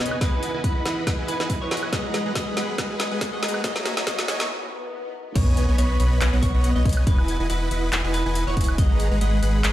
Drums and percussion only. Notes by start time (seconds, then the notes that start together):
0.06 closed hi-hat
0.11 high woodblock
0.21 kick, snare, closed hi-hat
0.43 closed hi-hat
0.64 kick, closed hi-hat
0.86 snare, closed hi-hat
1.07 kick, snare, closed hi-hat, high woodblock
1.28 closed hi-hat
1.40 snare
1.50 kick, closed hi-hat
1.71 snare, closed hi-hat
1.77 closed hi-hat
1.83 high woodblock
1.93 kick, snare, closed hi-hat
2.14 snare, closed hi-hat
2.35 kick, snare, closed hi-hat
2.57 snare, closed hi-hat
2.78 kick, snare, closed hi-hat, high woodblock
3.00 snare, closed hi-hat
3.21 kick, snare, closed hi-hat
3.43 snare, closed hi-hat
3.48 closed hi-hat
3.54 high woodblock
3.64 kick, snare, closed hi-hat
3.76 snare
3.86 snare, closed hi-hat
3.97 snare
4.07 kick, snare, closed hi-hat
4.19 snare
4.28 snare, closed hi-hat
4.40 snare
5.36 kick, closed hi-hat, crash
5.57 closed hi-hat
5.78 closed hi-hat
6.00 closed hi-hat
6.21 clap, closed hi-hat, high woodblock
6.43 kick, closed hi-hat
6.64 closed hi-hat
6.85 kick, closed hi-hat
6.89 closed hi-hat
6.93 closed hi-hat
6.97 high woodblock
7.07 kick, closed hi-hat
7.19 high woodblock
7.28 closed hi-hat
7.50 closed hi-hat
7.71 closed hi-hat
7.93 clap, closed hi-hat, high woodblock
8.14 closed hi-hat
8.35 closed hi-hat
8.57 kick, closed hi-hat
8.61 closed hi-hat
8.64 closed hi-hat
8.69 high woodblock
8.78 kick, closed hi-hat
9.00 closed hi-hat
9.21 closed hi-hat
9.43 closed hi-hat
9.64 clap, closed hi-hat, high woodblock